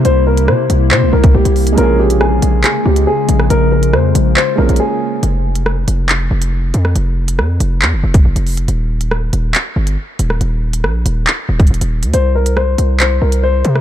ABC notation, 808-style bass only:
X:1
M:4/4
L:1/16
Q:1/4=139
K:Bbdor
V:1 name="808-style bass" clef=bass
C,,4 C,2 C,,2 C, C,, C,,2 C,, C,,3 | B,,,6 B,,,2 z2 D,,2 z2 B,,,2 | B,,,4 F,,2 B,,,2 z2 B,,, B,,, z4 | F,,,6 F,,,4 F,,,4 F,,2 |
F,,,4 F,,2 F,,,2 F,, F,,, F,,,2 F,,, F,,,3 | E,,,6 E,,,2 z2 G,,,2 z2 E,,,2 | E,,,4 B,,,2 E,,,2 z2 E,,,2 E,,, E,,,2 E,, | C,,6 C,,4 C,,4 C,2 |]